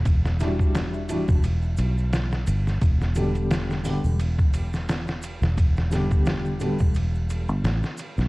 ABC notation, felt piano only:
X:1
M:4/4
L:1/8
Q:"Swing 16ths" 1/4=87
K:G
V:1 name="Felt piano"
z [E,G,DF]2 [E,G,DF] z4 | z [D,G,B,G]2 [D,G,B,G] z4 | z [D,G,B,G]2 [D,G,B,G] z4 |]